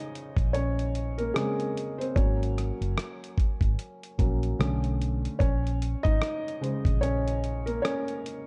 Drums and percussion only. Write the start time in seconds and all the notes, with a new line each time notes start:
0.15 closed hi-hat
0.37 kick, closed hi-hat
0.54 closed hi-hat
0.79 closed hi-hat
0.95 closed hi-hat
1.19 closed hi-hat
1.36 cross-stick, closed hi-hat
1.60 closed hi-hat
1.77 closed hi-hat
2.01 closed hi-hat
2.16 kick, closed hi-hat
2.43 closed hi-hat
2.58 cross-stick, closed hi-hat
2.82 closed hi-hat
2.98 cross-stick, closed hi-hat
3.24 closed hi-hat
3.38 kick, closed hi-hat
3.61 kick, closed hi-hat
3.79 closed hi-hat
4.03 closed hi-hat
4.19 kick, closed hi-hat
4.43 closed hi-hat
4.61 cross-stick, closed hi-hat
4.84 closed hi-hat
5.02 closed hi-hat
5.25 closed hi-hat
5.40 kick, closed hi-hat
5.67 closed hi-hat
5.82 closed hi-hat
6.05 kick, closed hi-hat
6.22 cross-stick, closed hi-hat
6.48 closed hi-hat
6.64 closed hi-hat
6.85 kick, closed hi-hat
7.03 closed hi-hat
7.28 closed hi-hat
7.44 closed hi-hat
7.67 closed hi-hat
7.85 cross-stick, closed hi-hat
8.08 closed hi-hat
8.26 closed hi-hat